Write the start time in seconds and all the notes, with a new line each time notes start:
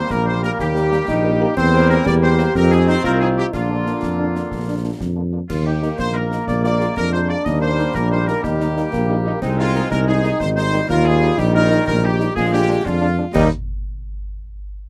Already playing: G3 A#3
0.10 A#1 A#3 A#4, concert bass drum, snare
0.26 G3 A#3 C5
0.42 G3 A#3 A#4, snare
0.59 D#2 G4, concert bass drum, snare
0.74 G3 A#3, snare
0.91 G3 A#3, snare
1.08 A#1 D#4, concert bass drum, snare
1.24 G3 A#3
1.40 G3 A#3
1.57 E2 G3 A#3 C4 C5, concert bass drum, snare, crash
1.72 G3 A#3 C4
1.89 G3 A#3 C4 A#4, snare
2.06 E2 G4 D5, concert bass drum, snare
2.22 G3 A#3 C4 C5
2.38 G3 A#3 C4, snare
2.55 F2 D#3 C4 A#4, concert bass drum, snare
2.71 F3 C4 D#4 G#4, snare
2.87 F3 C4 D#4 C5, snare
3.03 C2 F4 A#4, concert bass drum, snare
3.20 F3 C4 D#4 G#4
3.36 F3 C4 D#4 G4
3.53 A#1 D3 A#3 D4 F4, concert bass drum, snare, crash
3.69 F3 A#3 D4
3.86 F3 A#3 D4, snare
4.03 F2, concert bass drum, snare
4.19 F3 A#3 D4
4.35 F3 A#3 D4, snare
4.51 A#1, concert bass drum, snare
4.67 F3 A#3 D4
4.84 F3 A#3 D4
5.00 F2, concert bass drum, snare
5.16 F3 A#3 D4
5.32 F3 A#3 D4
5.49 D#2 D#3 A#3 F4, concert bass drum, snare, crash
5.65 D#3 A#3 D#4 G4
5.81 D#3 A#3 D#4, snare
5.98 A#1 C5, concert bass drum, snare
6.14 D#3 A#3 D#4 A#4
6.30 D#3 A#3 D#4, snare
6.47 A#1 G#3 D5, concert bass drum, snare
6.64 G#3 A#3 F4 D5, snare
6.80 G#3 A#3 F4, snare
6.96 F2 D4 A#4, concert bass drum, snare
7.12 G#3 A#3 F4 C5
7.29 G#3 A#3 F4 D5
7.45 D#2 G3 A#3 D#5, concert bass drum, snare, crash
7.61 G3 A#3 D#4 C5
7.78 G3 A#3 D#4, snare
7.94 A#1 A#4, concert bass drum, snare
8.10 G3 A#3 D#4 C5
8.26 G3 A#3 D#4 A#4, snare
8.43 D#2 D#4 G4, concert bass drum, snare
8.60 G3 A#3 D#4, snare
8.76 G3 A#3 D#4, snare
8.92 A#1 A#3, concert bass drum, snare
9.09 G3 A#3 D#4
9.26 G3 A#3 D#4
9.42 C2 D#3 G#3 C4 D#4, concert bass drum, snare, crash
9.58 D#3 G#3 D#4 F4
9.75 D#3 G#3 D#4, snare
9.91 C2 D#4 A#4, concert bass drum, snare
10.07 D#3 G#3 D#4 G#4
10.24 D#3 G#3 D#4, snare
10.40 G#1 G3 C5, concert bass drum, snare
10.56 D#3 G3 D#4 C5, snare
10.73 D#3 G3 D#4, snare
10.89 D#2 F4 A#4, concert bass drum, snare
11.05 D#3 G3 D#4 G#4
11.22 D#3 G3 D#4
11.38 A#1 D#3 D#4 G4, concert bass drum, snare, crash
11.54 D#3 G3 D#4 A#4
11.71 D#3 G3 D#4, snare
11.87 A#1 A#4, concert bass drum, snare
12.03 D#3 G3 D#4 G4
12.20 D#3 G3 D#4, snare
12.36 A#1 D3 G#3 F4 G#4, concert bass drum, snare
12.52 F3 G#3 D4 G4
12.69 F3 G#3 D4
12.84 F2 D4 F4, concert bass drum, snare
13.01 F3 G#3 D4
13.18 F3 G#3 D4
13.34 D#2 D#3 G3 A#3 D#4 D#5, concert bass drum, snare, crash